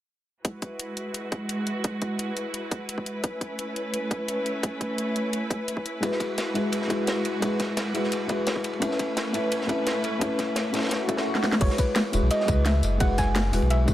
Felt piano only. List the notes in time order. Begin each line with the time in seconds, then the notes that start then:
6.00 G#3 E4 F#4
6.05 B4
6.54 G#3 E4 F#4 B4
6.87 G#3 E4 F#4
6.93 B4
7.40 G#3 E4 F#4
7.45 B4
7.93 G#3 E4 F#4 B4
8.27 G#3 E4 F#4
8.32 B4
8.80 A3 C#4 E4
8.85 B4
9.33 A3 C#4 E4 B4
9.67 A3 C#4 E4
9.72 B4
10.19 A3 C#4 E4
10.24 B4
10.73 A3 C#4 E4 B4
11.07 A3 C#4 E4 A4
11.58 G#3 E4 F#4
11.63 B4
12.12 G#3 E4 F#4 B4
12.45 G#3 E4 F#4
12.51 B4
12.98 G#3 E4 F#4
13.03 B4
13.52 G#3 E4 F#4 B4
13.85 G#3 E4 F#4
13.90 B4